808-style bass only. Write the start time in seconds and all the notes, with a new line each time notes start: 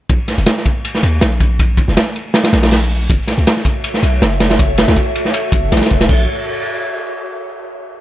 0.10 A#1
0.38 F1
1.03 D#2
1.22 A#1
1.88 F1
2.53 A#1
3.10 F#1
3.38 C#2
4.03 B1
4.22 F#1
4.88 C#2
5.52 F#1
5.72 A1
5.91 E1
6.09 A#1